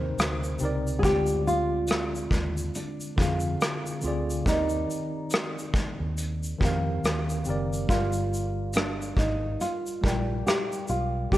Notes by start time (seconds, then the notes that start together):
Already playing: D#2 C3 C4 D#4 A#4 C5 D5
0.18 D2, cross-stick, closed hi-hat, shaker
0.44 shaker
0.59 C#2 C3 C4 D#4, shaker
0.63 A#4 D5
0.87 shaker
0.99 D3 G#4
1.03 D2 G#3 C4 F4 G4, kick, closed hi-hat, shaker
1.08 C#5
1.15 D5
1.27 shaker
1.47 F4, shaker
1.88 cross-stick, closed hi-hat, shaker
2.15 shaker
2.31 D#2, kick, shaker
2.58 shaker
2.75 D4, closed hi-hat, shaker
3.01 shaker
3.16 F2 D3 C4 F4, kick
3.20 G#4 F5, shaker
3.40 shaker
3.61 cross-stick, closed hi-hat, shaker
3.86 shaker
4.02 D2 D3 C4 F4, shaker
4.06 G#4 D5
4.30 shaker
4.44 D#2 D#3 C4 D#4 G4, kick, closed hi-hat, shaker
4.49 A#4 D5
4.69 shaker
4.91 shaker
5.31 cross-stick, closed hi-hat, shaker
5.58 shaker
5.74 kick, shaker
6.00 D#2
6.18 closed hi-hat, shaker
6.43 shaker
6.59 F2 D#3 C4 G4, kick
6.63 A#4 F5, shaker
7.04 D#2, cross-stick, closed hi-hat, shaker
7.30 shaker
7.44 F#1 D#3 C4 G4, shaker
7.49 A#4 D5
7.73 shaker
7.87 G1 G3 F4 G4 A#4, kick, closed hi-hat, shaker
7.92 D5 F5
8.13 shaker
8.34 shaker
8.73 D4, cross-stick, closed hi-hat, shaker
9.02 shaker
9.17 G#1 D#4, kick, shaker
9.61 F4, closed hi-hat, shaker
9.86 shaker
10.01 A#1 G3 G4 A#4, kick
10.06 D5 G5, shaker
10.47 G4, cross-stick, closed hi-hat, shaker
10.73 shaker
10.88 B1 F4, shaker
11.30 C2 C3 C4 G4 A#4, kick, closed hi-hat, shaker